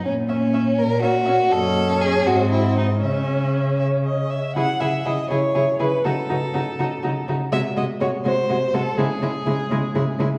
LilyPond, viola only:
\new Staff \with { instrumentName = "Viola" } { \time 6/8 \key fis \mixolydian \tempo 4. = 81 r8 cis'8 cis'8 r8 cis'8 cis'8 | \key cis \minor cis'4. bis4. | cis'2~ cis'8 r8 | e'8 e'8 e'8 e'8 e'8 e'8 |
dis'8 dis'8 dis'8 dis'8 dis'8 dis'8 | gis8 gis8 gis8 gis8 gis8 gis8 | gis8 gis8 gis8 gis8 gis8 gis8 | }